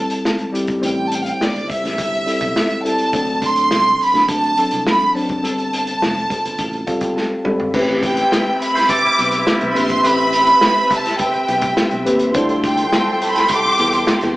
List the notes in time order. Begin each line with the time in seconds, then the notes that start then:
Already playing: G3 C4 E4 A4 A5
0.10 closed hi-hat
0.25 snare
0.39 closed hi-hat
0.52 G3 C4 E4 G4, closed hi-hat
0.67 kick, closed hi-hat
0.80 A1 G3 C4 E4 C5, closed hi-hat
0.86 G5
1.07 A5
1.12 G5, closed hi-hat
1.24 F5, closed hi-hat
1.32 G5
1.41 G1 D5, snare
1.56 closed hi-hat
1.70 E5, kick, closed hi-hat
1.84 A1, snare, closed hi-hat
1.98 G1, kick, closed hi-hat
2.13 closed hi-hat
2.26 G3 C4 E4 A4, closed hi-hat
2.41 B1, kick, closed hi-hat
2.56 snare
2.70 closed hi-hat
2.83 G3 C4 E4 A4 A5, closed hi-hat
2.98 closed hi-hat
3.13 D2 F#3 C4 D4 A4, kick, closed hi-hat
3.27 closed hi-hat
3.42 C6, kick, closed hi-hat
3.56 closed hi-hat
3.71 C2, snare
3.86 closed hi-hat
4.01 B5, open hi-hat
4.14 D2, snare, closed hi-hat
4.28 D2 A5, kick, closed hi-hat
4.43 closed hi-hat
4.57 F#3 C4 D4 A4, closed hi-hat
4.71 C2, closed hi-hat
4.87 B5, snare
5.15 F#3 C4 D4 C5 A5, open hi-hat
5.29 kick, closed hi-hat
5.42 G1 G3 C4 F4 A4, closed hi-hat
5.58 closed hi-hat
5.73 closed hi-hat
5.87 closed hi-hat
6.02 F1, snare
6.17 closed hi-hat
6.30 kick, closed hi-hat
6.45 G1, closed hi-hat
6.58 A1, kick, closed hi-hat
6.73 closed hi-hat
6.87 G3 C4 F4 A4 F5, kick, closed hi-hat
7.01 G1 G5, kick, closed hi-hat
7.16 A5, snare
7.44 G3 C4 F4 A4 B5, mid tom
7.60 floor tom
7.72 A1 A3 C4 G4 B4 E5, kick, crash
8.03 G5, kick, closed hi-hat
8.17 closed hi-hat
8.32 snare
8.61 B5, closed hi-hat
8.75 E4 C5, snare, closed hi-hat
8.89 C4 A4 D6, kick, closed hi-hat
9.04 G3 E4, muted fingered electric bass stroke
9.18 B1, closed hi-hat
9.32 closed hi-hat
9.47 snare
9.61 B1, closed hi-hat
9.71 A3 B5
9.75 A#1 C4 G4 B4 C6, closed hi-hat
9.89 kick, closed hi-hat
10.03 A1 A3 C4 G4 B4 B5, closed hi-hat
10.18 closed hi-hat
10.33 closed hi-hat
10.46 closed hi-hat
10.61 snare
10.91 A5, kick, closed hi-hat
11.05 snare, closed hi-hat
11.19 G5, kick, closed hi-hat
11.33 muted fingered electric bass stroke, closed hi-hat
11.48 B1, closed hi-hat
11.61 kick, closed hi-hat
11.77 snare
11.91 B1, closed hi-hat
12.05 D#2 A3 C4 G4 B4, closed hi-hat
12.19 closed hi-hat
12.34 D2 C3 F3 G3 E4 F4 G4 A4 C5 E5 G5 C6, kick, closed hi-hat
12.49 closed hi-hat
12.64 G5, kick, closed hi-hat
12.77 closed hi-hat
12.93 snare
13.22 B5, closed hi-hat
13.36 snare, closed hi-hat
13.48 D6, kick, closed hi-hat
13.66 muted fingered electric bass stroke
13.78 E2, closed hi-hat
13.92 closed hi-hat
14.07 snare
14.21 E2, snare, closed hi-hat